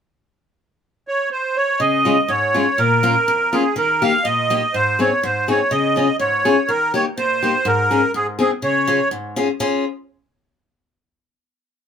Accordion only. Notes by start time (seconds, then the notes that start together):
1.08 C#5
1.31 C5
1.56 C#5
1.80 D#5
2.29 C#5
2.79 A#4
3.53 G#4
3.78 A#4
4.03 F5
4.24 D#5
4.74 C5
5.00 C#5
5.23 C5
5.49 C#5
5.71 D#5
6.20 C#5
6.69 A#4
6.95 C#5
7.18 C5
7.67 A#4
8.16 G#4
8.41 G#4
8.64 C#5